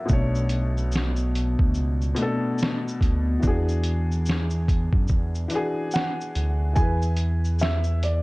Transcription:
Already playing: F#3 E4 F#4 A4 A#4 D5 E5 F#5
0.05 B2 A3, shaker
0.10 B1 D4 C#5, kick
0.35 shaker
0.49 closed hi-hat, shaker
0.77 shaker
0.92 snare, shaker
1.16 shaker
1.35 closed hi-hat, shaker
1.59 D2, kick
1.74 C#2, shaker
2.02 shaker
2.15 B2 A3, closed hi-hat, shaker
2.20 D4 A4
2.58 shaker
2.63 snare
2.88 shaker
3.01 D2, kick, closed hi-hat, shaker
3.40 E2 E3 D4, kick, shaker
3.45 F#4 G#4
3.69 shaker
3.84 closed hi-hat, shaker
4.12 shaker
4.26 snare, shaker
4.50 shaker
4.68 kick, closed hi-hat, shaker
4.93 F#2, kick
5.08 E2, kick, shaker
5.35 shaker
5.48 E3 D4, closed hi-hat, shaker
5.53 F#4 G#4
5.91 F#5, shaker
5.96 snare
6.21 shaker
6.35 D2, closed hi-hat, shaker
6.73 E2 E3 E4 G#5, kick, shaker
6.78 G#4 B4
7.02 shaker
7.17 closed hi-hat, shaker
7.44 shaker
7.59 E5, snare, shaker
7.84 shaker
8.03 D5, closed hi-hat, shaker

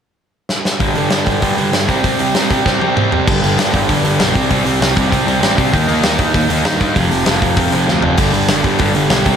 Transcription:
0.49 snare
0.65 snare
0.80 G2 D3 G3, kick, open hi-hat
0.95 G2 D3 G3, open hi-hat
1.10 G2 D3 G3, snare, open hi-hat
1.26 G2 D3 G3, kick, open hi-hat
1.42 G2 D3 G3, kick, open hi-hat
1.58 G2 D3 G3, open hi-hat
1.73 G2 D3 G3, snare, open hi-hat
1.87 C3 G3 C4, kick, open hi-hat
2.03 C3 G3 C4, kick, open hi-hat
2.19 C3 G3 C4, open hi-hat
2.35 C3 G3 C4, snare, open hi-hat
2.50 C3 G3 C4, kick, open hi-hat
2.66 C3 G3 C4, kick, snare
2.80 C3 G3 C4, high tom
2.97 C3 G3 C4, mid tom
3.12 C3 G3 C4, floor tom
3.26 G1 G2 D3 G3, kick, crash
3.42 G1 G2 D3 G3, open hi-hat
3.57 G1 G2 D3 G3, snare, open hi-hat
3.74 G1 G2 D3 G3, kick, open hi-hat
3.89 G1 G2 D3 G3, kick, open hi-hat
4.04 G1 G2 D3 G3, open hi-hat
4.19 B1 G2 D3 G3, snare, open hi-hat
4.35 C2 C3 G3 C4, kick, open hi-hat
4.50 C2 C3 G3 C4, kick, open hi-hat
4.65 C2 C3 G3 C4, open hi-hat
4.80 C2 C3 G3 C4, snare, open hi-hat
4.97 C2 C3 G3 C4, kick, open hi-hat
5.11 C2 C3 G3 C4, kick, open hi-hat
5.26 C2 C3 G3 C4, open hi-hat
5.41 A1 C3 G3 C4, snare, open hi-hat
5.55 C2 C3 G3 C4, kick, open hi-hat
5.72 D#2 D#3 A#3 D#4, kick, open hi-hat
5.88 D#2 D#3 A#3 D#4, open hi-hat
6.03 D#2 D#3 A#3 D#4, snare, open hi-hat
6.19 D#2 D#3 A#3 D#4, kick, open hi-hat
6.34 D#2 D#3 A#3 D#4, kick, open hi-hat
6.50 D#2 D#3 A#3 D#4, open hi-hat
6.65 G2 D#3 A#3 D#4, snare, open hi-hat
6.81 D#3 A#3 D#4, kick, open hi-hat
6.94 F1 F2 C3 F3, kick, open hi-hat
7.09 F1 F2 C3 F3, open hi-hat
7.25 F1 F2 C3 F3, snare, open hi-hat
7.40 F1 F2 C3 F3, kick, open hi-hat
7.56 F1 F2 C3 F3, kick, open hi-hat
7.72 F1 F2 C3 F3, open hi-hat
7.87 D2 F2 C3 F3, snare
8.02 F#1 F2 C3 F3, floor tom
8.18 G1 G2 D3 G3, kick, open hi-hat, crash
8.32 G1 G2 D3 G3, open hi-hat
8.48 G1 G2 D3 G3, snare, open hi-hat
8.64 G1 G2 D3 G3, kick, open hi-hat
8.79 G1 G2 D3 G3, kick, open hi-hat
8.94 G1 G2 D3 G3, open hi-hat
9.09 B1 G2 D3 G3, snare, open hi-hat
9.25 C2 C3 G3 C4, kick, open hi-hat

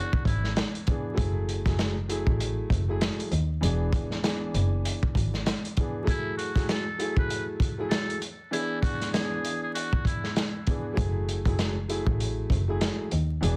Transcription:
Already playing: E3 B3 D4 F#4 G#4
0.13 kick
0.25 G#1 E4, kick, closed hi-hat
0.44 snare
0.56 snare, closed hi-hat
0.75 closed hi-hat
0.87 E3 B3 D4 G#4, kick, closed hi-hat
1.13 F#3 A3 E4 G#4
1.17 F#1, kick, closed hi-hat
1.49 closed hi-hat
1.66 F#1 F#3 A3 E4 G#4, kick, snare, closed hi-hat
1.79 snare, closed hi-hat
2.08 F#3 A3 E4 G#4, closed hi-hat
2.27 A1, kick
2.40 closed hi-hat
2.70 F#1, kick, closed hi-hat
2.88 F#3 A3 E4 G#4
3.01 snare, closed hi-hat
3.20 closed hi-hat
3.32 D#2, closed hi-hat
3.61 E1 E3 B3 D4 G#4, closed hi-hat
3.93 kick, closed hi-hat
4.11 snare
4.23 E3 B3 D4 G#4, snare, closed hi-hat
4.54 F#1, closed hi-hat
4.85 closed hi-hat
5.03 kick
5.15 G#1, kick, closed hi-hat
5.34 snare
5.46 snare, closed hi-hat
5.65 closed hi-hat
5.77 E3 B3 D4 G#4, kick, closed hi-hat
6.03 F#3 A3 E4 G#4
6.07 E4, kick, closed hi-hat
6.37 F#4, closed hi-hat
6.56 F#3 A3 E4 G#4, kick, snare, closed hi-hat
6.69 A4, snare, closed hi-hat
6.98 F#3 A3 E4 G#4, closed hi-hat
7.17 B4, kick
7.30 closed hi-hat
7.60 kick, closed hi-hat
7.78 F#3 A3 E4 G#4
7.90 A4, snare, closed hi-hat
8.10 closed hi-hat
8.22 closed hi-hat
8.51 E3 B3 D4 E4 G#4, closed hi-hat
8.82 F#4, kick, closed hi-hat
9.01 snare, closed hi-hat
9.13 E3 B3 D4 G#4, snare, closed hi-hat
9.45 closed hi-hat
9.63 G#4
9.74 F#4, closed hi-hat
9.93 kick
10.05 E4, kick, closed hi-hat
10.24 snare
10.36 snare, closed hi-hat
10.67 E3 B3 D4 G#4, kick, closed hi-hat
10.93 F#3 A3 E4 G#4
10.97 F#1, kick, closed hi-hat
11.29 closed hi-hat
11.46 F#1 F#3 A3 E4 G#4, kick, closed hi-hat
11.59 snare, closed hi-hat
11.88 F#3 A3 E4 G#4, closed hi-hat
12.06 A1, kick
12.20 closed hi-hat
12.50 F#1, kick, closed hi-hat
12.68 F#3 A3 E4 G#4
12.81 snare, closed hi-hat
13.11 D#2, closed hi-hat
13.41 E1 E3 B3 D4 G#4, closed hi-hat

